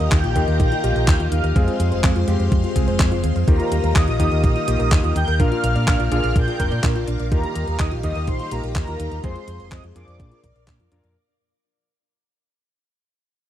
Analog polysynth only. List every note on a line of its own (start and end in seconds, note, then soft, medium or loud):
0.00 0.13 D#6 loud
0.12 0.57 G5 medium
0.12 0.59 G6 loud
0.60 1.28 G5 medium
0.60 1.34 G6 loud
1.32 1.77 F5 medium
1.32 1.76 F6 loud
3.48 3.93 A#4 medium
3.48 3.97 A#5 loud
3.96 4.19 D#5 medium
3.96 4.19 D#6 loud
4.20 4.42 D#5 medium
4.20 4.43 D#6 loud
4.44 5.12 D#5 medium
4.44 5.18 D#6 loud
5.16 5.39 G5 medium
5.16 5.41 G6 loud
5.40 6.08 F5 medium
5.40 6.11 F6 loud
6.12 6.34 F5 medium
6.12 6.34 F6 loud
6.36 7.04 G5 medium
6.36 7.04 G6 loud
7.32 7.77 A#4 medium
7.32 7.81 A#5 loud
7.80 7.91 D#5 medium
7.80 7.91 D#6 loud
8.04 8.27 D#5 medium
8.04 8.28 D#6 loud
8.28 8.51 C5 medium
8.28 8.53 C6 loud
8.52 8.63 A#4 medium
8.52 8.63 A#5 medium
8.76 9.21 A#4 medium
8.76 9.25 A#5 medium
9.24 9.46 C5 medium
9.24 9.47 C6 loud
9.48 9.70 C5 medium
9.48 9.70 C6 loud
9.72 9.83 D#5 medium
9.72 9.83 D#6 loud
9.96 10.64 D5 medium
9.96 10.64 D6 medium